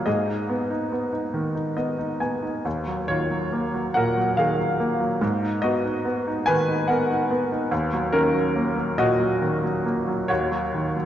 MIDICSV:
0, 0, Header, 1, 2, 480
1, 0, Start_track
1, 0, Key_signature, -6, "minor"
1, 0, Tempo, 863309
1, 37, Time_signature, 6, 3, 24, 8
1, 2437, Tempo, 833333
1, 4837, Tempo, 878477
1, 6206, End_track
2, 0, Start_track
2, 0, Title_t, "Grand piano"
2, 0, Program_c, 0, 0
2, 0, Control_c, 0, 64, 127
2, 31, Note_on_c, 0, 75, 63
2, 36, Note_on_c, 0, 44, 50
2, 37, Note_on_c, 0, 68, 49
2, 44, Control_c, 0, 64, 0
2, 153, Note_on_c, 0, 63, 40
2, 155, Control_c, 0, 64, 127
2, 275, Note_on_c, 0, 59, 39
2, 383, Note_off_c, 0, 63, 0
2, 392, Note_on_c, 0, 63, 37
2, 504, Note_off_c, 0, 59, 0
2, 512, Note_on_c, 0, 59, 39
2, 619, Note_off_c, 0, 63, 0
2, 627, Note_on_c, 0, 63, 37
2, 744, Note_on_c, 0, 51, 46
2, 854, Note_off_c, 0, 63, 0
2, 862, Note_on_c, 0, 63, 37
2, 964, Note_off_c, 0, 75, 0
2, 967, Note_off_c, 0, 68, 0
2, 975, Note_off_c, 0, 59, 0
2, 982, Note_on_c, 0, 75, 48
2, 983, Note_on_c, 0, 59, 35
2, 1095, Note_off_c, 0, 63, 0
2, 1104, Note_on_c, 0, 63, 38
2, 1211, Note_off_c, 0, 75, 0
2, 1217, Note_off_c, 0, 59, 0
2, 1225, Note_on_c, 0, 59, 34
2, 1225, Note_on_c, 0, 80, 43
2, 1340, Note_off_c, 0, 63, 0
2, 1348, Note_on_c, 0, 63, 34
2, 1453, Note_off_c, 0, 51, 0
2, 1455, Note_off_c, 0, 44, 0
2, 1457, Note_off_c, 0, 80, 0
2, 1467, Note_off_c, 0, 59, 0
2, 1471, Note_off_c, 0, 63, 0
2, 1474, Note_on_c, 0, 39, 50
2, 1486, Control_c, 0, 64, 0
2, 1567, Control_c, 0, 64, 127
2, 1598, Note_on_c, 0, 54, 38
2, 1713, Note_on_c, 0, 73, 76
2, 1718, Note_on_c, 0, 51, 37
2, 1724, Note_on_c, 0, 65, 46
2, 1830, Note_off_c, 0, 54, 0
2, 1839, Note_on_c, 0, 54, 37
2, 1959, Note_on_c, 0, 58, 38
2, 2072, Note_off_c, 0, 54, 0
2, 2080, Note_on_c, 0, 54, 39
2, 2181, Note_off_c, 0, 65, 0
2, 2192, Note_on_c, 0, 78, 72
2, 2197, Note_on_c, 0, 46, 48
2, 2205, Note_on_c, 0, 70, 57
2, 2212, Note_off_c, 0, 73, 0
2, 2312, Note_off_c, 0, 54, 0
2, 2320, Note_on_c, 0, 54, 40
2, 2423, Note_off_c, 0, 70, 0
2, 2424, Note_off_c, 0, 51, 0
2, 2430, Note_on_c, 0, 77, 65
2, 2433, Note_on_c, 0, 51, 42
2, 2440, Note_off_c, 0, 78, 0
2, 2440, Note_on_c, 0, 68, 47
2, 2546, Note_off_c, 0, 54, 0
2, 2555, Note_on_c, 0, 54, 37
2, 2666, Note_off_c, 0, 58, 0
2, 2675, Note_on_c, 0, 58, 43
2, 2786, Note_off_c, 0, 54, 0
2, 2794, Note_on_c, 0, 54, 40
2, 2894, Note_off_c, 0, 77, 0
2, 2896, Note_off_c, 0, 39, 0
2, 2896, Note_off_c, 0, 46, 0
2, 2899, Note_off_c, 0, 68, 0
2, 2903, Note_off_c, 0, 51, 0
2, 2911, Note_off_c, 0, 58, 0
2, 2914, Note_off_c, 0, 54, 0
2, 2916, Note_on_c, 0, 44, 52
2, 2928, Control_c, 0, 64, 0
2, 3035, Control_c, 0, 64, 127
2, 3037, Note_on_c, 0, 63, 39
2, 3148, Note_on_c, 0, 75, 74
2, 3159, Note_on_c, 0, 59, 42
2, 3159, Note_on_c, 0, 66, 51
2, 3270, Note_off_c, 0, 63, 0
2, 3279, Note_on_c, 0, 63, 39
2, 3389, Note_off_c, 0, 59, 0
2, 3398, Note_on_c, 0, 59, 40
2, 3517, Note_off_c, 0, 63, 0
2, 3526, Note_on_c, 0, 63, 44
2, 3616, Note_off_c, 0, 66, 0
2, 3632, Note_on_c, 0, 80, 78
2, 3642, Note_on_c, 0, 71, 60
2, 3648, Note_off_c, 0, 75, 0
2, 3648, Note_on_c, 0, 51, 52
2, 3754, Note_off_c, 0, 63, 0
2, 3763, Note_on_c, 0, 63, 43
2, 3864, Note_off_c, 0, 71, 0
2, 3873, Note_on_c, 0, 78, 64
2, 3874, Note_off_c, 0, 59, 0
2, 3883, Note_off_c, 0, 80, 0
2, 3883, Note_on_c, 0, 59, 42
2, 3884, Note_on_c, 0, 70, 52
2, 3996, Note_off_c, 0, 63, 0
2, 4005, Note_on_c, 0, 63, 42
2, 4111, Note_off_c, 0, 59, 0
2, 4120, Note_on_c, 0, 59, 45
2, 4235, Note_off_c, 0, 63, 0
2, 4244, Note_on_c, 0, 63, 43
2, 4330, Note_off_c, 0, 78, 0
2, 4331, Note_off_c, 0, 44, 0
2, 4336, Note_off_c, 0, 70, 0
2, 4339, Note_off_c, 0, 51, 0
2, 4350, Note_off_c, 0, 59, 0
2, 4355, Note_on_c, 0, 39, 58
2, 4356, Note_off_c, 0, 63, 0
2, 4364, Control_c, 0, 64, 0
2, 4452, Control_c, 0, 64, 127
2, 4481, Note_on_c, 0, 54, 43
2, 4593, Note_on_c, 0, 70, 77
2, 4597, Note_on_c, 0, 61, 55
2, 4600, Note_on_c, 0, 51, 46
2, 4708, Note_off_c, 0, 54, 0
2, 4717, Note_on_c, 0, 54, 41
2, 4840, Note_on_c, 0, 58, 45
2, 4944, Note_off_c, 0, 54, 0
2, 4952, Note_on_c, 0, 54, 45
2, 5054, Note_off_c, 0, 61, 0
2, 5071, Note_on_c, 0, 46, 56
2, 5073, Note_on_c, 0, 75, 83
2, 5080, Note_on_c, 0, 66, 65
2, 5087, Note_off_c, 0, 70, 0
2, 5183, Note_off_c, 0, 54, 0
2, 5191, Note_on_c, 0, 54, 43
2, 5302, Note_off_c, 0, 51, 0
2, 5310, Note_on_c, 0, 51, 42
2, 5423, Note_off_c, 0, 54, 0
2, 5431, Note_on_c, 0, 54, 42
2, 5542, Note_off_c, 0, 58, 0
2, 5550, Note_on_c, 0, 58, 42
2, 5662, Note_off_c, 0, 54, 0
2, 5670, Note_on_c, 0, 54, 42
2, 5770, Note_off_c, 0, 46, 0
2, 5771, Note_off_c, 0, 39, 0
2, 5774, Note_off_c, 0, 66, 0
2, 5778, Note_off_c, 0, 51, 0
2, 5784, Note_on_c, 0, 73, 70
2, 5785, Note_off_c, 0, 58, 0
2, 5788, Note_off_c, 0, 54, 0
2, 5790, Note_on_c, 0, 39, 57
2, 5794, Note_on_c, 0, 66, 49
2, 5800, Control_c, 0, 64, 0
2, 5814, Note_off_c, 0, 75, 0
2, 5902, Control_c, 0, 64, 127
2, 5910, Note_on_c, 0, 54, 43
2, 6035, Note_on_c, 0, 51, 42
2, 6147, Note_off_c, 0, 54, 0
2, 6155, Note_on_c, 0, 54, 39
2, 6206, Note_off_c, 0, 39, 0
2, 6206, Note_off_c, 0, 51, 0
2, 6206, Note_off_c, 0, 54, 0
2, 6206, Note_off_c, 0, 66, 0
2, 6206, Note_off_c, 0, 73, 0
2, 6206, End_track
0, 0, End_of_file